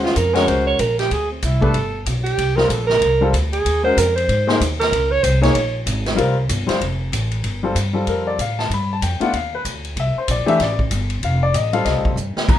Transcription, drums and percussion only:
0.05 snare
0.16 kick, hi-hat pedal, ride
0.35 snare, ride
0.48 kick, ride
0.79 kick, hi-hat pedal, ride
0.99 snare, ride
1.11 kick, ride
1.42 kick, hi-hat pedal, ride
1.62 kick
1.74 kick, ride
2.06 kick, hi-hat pedal, ride
2.26 ride
2.38 kick, ride
2.58 snare
2.70 kick, hi-hat pedal, ride
2.90 snare
3.01 kick, ride
3.33 kick, hi-hat pedal, ride
3.53 ride
3.65 kick, ride
3.97 kick, hi-hat pedal, ride
4.17 ride
4.29 kick, ride
4.49 snare
4.61 kick, hi-hat pedal, ride
4.81 snare, ride
4.92 kick, ride
5.24 kick, hi-hat pedal, ride
5.43 snare, ride
5.55 kick, ride
5.87 kick, hi-hat pedal, ride
6.06 snare, ride
6.18 kick, ride
6.49 kick, hi-hat pedal, ride
6.69 snare, ride
6.81 kick, ride
7.12 kick, hi-hat pedal, ride
7.32 ride
7.44 kick, ride
7.75 kick, hi-hat pedal, ride
8.07 kick, ride
8.39 kick, hi-hat pedal, ride
8.59 snare
8.70 kick, ride
9.02 kick, hi-hat pedal, ride
9.21 ride
9.33 kick, ride
9.65 kick, hi-hat pedal, ride
9.85 ride
9.96 kick, ride
10.28 kick, hi-hat pedal, ride
10.48 ride
10.60 kick, snare, ride
10.79 kick
10.91 kick, hi-hat pedal, ride
11.10 ride
11.23 kick, ride
11.54 kick, hi-hat pedal, ride
11.73 ride
11.86 kick, snare, ride
12.05 kick
12.17 hi-hat pedal
12.37 snare
12.49 kick, crash

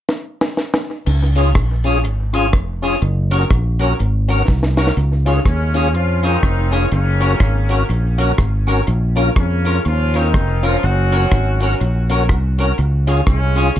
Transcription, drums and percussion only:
0.09 snare
0.41 snare
0.57 snare
0.74 snare
1.06 crash
1.36 closed hi-hat, tambourine
1.55 kick, cross-stick, closed hi-hat
1.84 closed hi-hat, tambourine
2.05 closed hi-hat
2.34 closed hi-hat, tambourine
2.53 kick, cross-stick, closed hi-hat
2.83 open hi-hat, tambourine
3.02 closed hi-hat
3.31 closed hi-hat, tambourine
3.50 kick, cross-stick, closed hi-hat
3.79 closed hi-hat, tambourine
4.00 closed hi-hat
4.29 closed hi-hat, tambourine
4.48 kick, snare
4.63 snare
4.77 snare, tambourine
4.87 snare
4.97 closed hi-hat
5.26 closed hi-hat
5.45 kick, cross-stick, closed hi-hat
5.74 closed hi-hat
5.95 closed hi-hat
6.23 closed hi-hat
6.43 kick, cross-stick, closed hi-hat
6.72 closed hi-hat
6.92 closed hi-hat
7.21 closed hi-hat
7.40 kick, cross-stick, closed hi-hat
7.69 closed hi-hat
7.90 closed hi-hat
8.18 closed hi-hat
8.38 kick, cross-stick, closed hi-hat
8.68 closed hi-hat
8.87 closed hi-hat
9.17 closed hi-hat
9.36 kick, cross-stick, closed hi-hat
9.65 closed hi-hat
9.85 closed hi-hat
10.14 closed hi-hat
10.34 kick, cross-stick, closed hi-hat
10.63 closed hi-hat
10.83 closed hi-hat
11.12 closed hi-hat
11.31 kick, cross-stick, closed hi-hat
11.60 closed hi-hat
11.81 closed hi-hat
12.10 closed hi-hat
12.29 kick, cross-stick, closed hi-hat
12.59 closed hi-hat
12.78 closed hi-hat
13.07 closed hi-hat, tambourine
13.27 kick, cross-stick, closed hi-hat
13.55 closed hi-hat, tambourine
13.76 closed hi-hat

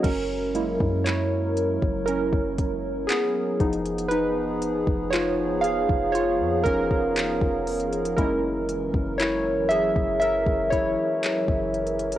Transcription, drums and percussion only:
0.04 kick, closed hi-hat, crash
0.55 closed hi-hat
0.80 kick
1.06 clap, closed hi-hat
1.57 closed hi-hat
1.82 kick
2.08 closed hi-hat
2.33 kick
2.58 kick, closed hi-hat
3.09 clap, closed hi-hat
3.60 kick, closed hi-hat
3.73 closed hi-hat
3.86 closed hi-hat
3.98 closed hi-hat
4.11 closed hi-hat
4.62 closed hi-hat
4.87 kick
5.13 clap, closed hi-hat
5.64 closed hi-hat
5.89 kick
6.15 closed hi-hat
6.66 kick, closed hi-hat
6.91 kick
7.16 clap, closed hi-hat
7.41 kick
7.67 closed hi-hat, open hi-hat
7.80 closed hi-hat
7.93 closed hi-hat
8.05 closed hi-hat
8.18 kick, closed hi-hat
8.69 closed hi-hat
8.94 kick
9.20 clap, closed hi-hat
9.71 closed hi-hat
9.96 kick
10.22 closed hi-hat
10.46 kick
10.72 kick, closed hi-hat
11.23 clap, closed hi-hat
11.48 kick
11.74 closed hi-hat
11.87 closed hi-hat
11.99 closed hi-hat
12.12 closed hi-hat

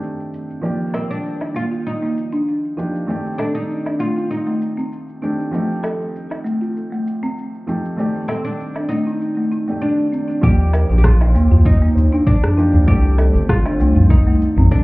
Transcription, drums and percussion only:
0.03 shaker
0.20 shaker
0.34 shaker
0.50 shaker
0.64 shaker
0.81 shaker
0.94 low woodblock, shaker
1.12 shaker
1.25 shaker
1.41 low woodblock, shaker
1.56 shaker
1.73 shaker
1.87 shaker
2.04 shaker
2.17 shaker
2.34 shaker
2.48 shaker
2.65 shaker
2.79 shaker
2.95 shaker
3.09 shaker
3.26 shaker
3.39 low woodblock, shaker
3.57 shaker
3.70 shaker
3.86 low woodblock, shaker
4.01 shaker
4.18 shaker
4.31 shaker
4.48 shaker
4.62 shaker
4.79 shaker
4.92 shaker
5.09 shaker
5.23 shaker
5.40 shaker
5.54 shaker
5.71 shaker
5.84 low woodblock, shaker
6.02 shaker
6.16 shaker
6.31 low woodblock, shaker
6.46 shaker
6.63 shaker
6.77 shaker
6.93 shaker
7.07 shaker
7.24 shaker
7.38 shaker
7.55 shaker
7.68 shaker
7.85 shaker
7.99 shaker
8.16 shaker
8.29 low woodblock, shaker
8.46 shaker
8.60 shaker
8.76 low woodblock, shaker
8.91 shaker
9.08 shaker
9.21 shaker
9.38 shaker
9.52 shaker
9.69 shaker
9.82 shaker
9.99 shaker
10.13 shaker
10.30 shaker
10.43 kick, shaker
10.60 shaker
10.73 tabla tin, low woodblock, shaker
10.91 tabla na, shaker
11.04 kick, cross-stick, shaker
11.21 tabla na, low woodblock, shaker
11.35 tabla na, shaker
11.52 tabla ge, shaker
11.65 kick, shaker
11.83 shaker
11.95 tabla tin, shaker
12.14 tabla na, shaker
12.27 kick, shaker
12.44 cross-stick, tabla ge, shaker
12.59 shaker
12.74 tabla tin, shaker
12.88 kick, shaker
13.06 shaker
13.18 tabla tin, low woodblock, shaker
13.35 tabla na, shaker
13.49 kick, cross-stick, shaker
13.65 tabla na, low woodblock, shaker
13.80 tabla na, shaker
13.97 tabla ge, shaker
14.10 kick, shaker
14.28 shaker
14.42 shaker
14.57 tabla tin, tabla ge, shaker
14.72 kick, tabla tin, shaker

